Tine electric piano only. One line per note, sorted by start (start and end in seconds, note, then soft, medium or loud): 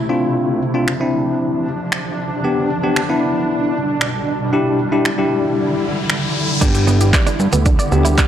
0.09 0.61 C4 medium
0.09 0.62 D4 medium
0.09 0.62 F4 medium
0.74 0.91 C4 medium
0.74 0.91 D4 medium
0.74 0.91 F4 medium
1.00 1.67 C4 medium
1.00 1.67 D4 medium
1.00 1.68 E4 medium
2.44 2.69 B3 medium
2.44 2.69 D4 medium
2.44 2.69 G4 medium
2.83 3.00 B3 medium
2.83 3.00 D4 medium
2.83 3.00 G4 medium
3.09 3.76 B3 medium
3.09 3.76 D4 medium
3.09 3.76 E4 medium
4.53 4.78 D4 medium
4.53 4.78 E4 medium
4.53 4.78 G4 medium
4.92 5.09 D4 medium
4.92 5.09 E4 medium
4.92 5.09 G4 medium
5.18 5.85 D4 medium
5.18 5.85 E4 medium
5.18 5.85 G4 medium
6.61 7.28 B3 medium
6.61 7.28 D4 medium
6.61 7.29 G4 medium
7.92 8.25 B3 medium
7.92 8.25 D4 medium
7.92 8.26 G4 medium